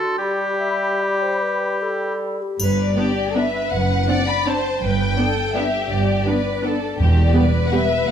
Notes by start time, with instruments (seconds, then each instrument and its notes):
Already playing: clarinet F#4, oboe A4, flute section C6
0.18 bassoon G3, clarinet G4, oboe G4, flute section B5
0.60 clarinet E5
1.03 clarinet D5
1.23 clarinet C5
1.42 clarinet B4
1.82 clarinet A4
2.42 clarinet G4
2.60 double bass section G1, cello section G2, violin section B4, triangle
2.78 violin section D5
2.96 viola section B3 D4, french horn section B3 D4, violin section G4
3.35 viola section B3 D4, french horn section B3 D4, violin section B4 E5
3.71 double bass section F#1, cello section F#2, violin section F#5
4.07 viola section C4 D4, french horn section C4 D4, violin section D5
4.27 violin section B5
4.46 viola section C4 D4, french horn section C4 D4, violin section C5 A5
4.81 double bass section G1, cello section G2, violin section B4 G5
5.17 viola section B3 D4, french horn section B3 D4, violin section A4
5.54 viola section B3 D4, french horn section B3 D4, violin section G4 E5
5.90 double bass section G1, cello section G2, violin section D5
6.26 viola section B3 D4, french horn section B3 D4, violin section B4
6.63 viola section B3 D4, french horn section B3 D4, violin section A4
6.99 double bass section E1, cello section E2, timpani E2, violin section G4
7.19 violin section D5
7.34 french horn section G3 B3, viola section B3 G4, violin section B4
7.67 violin section F#5
7.72 french horn section G3 B3, viola section B3 G4, violin section E5
8.08 cello section D#2, double bass section D#2, violin section F#5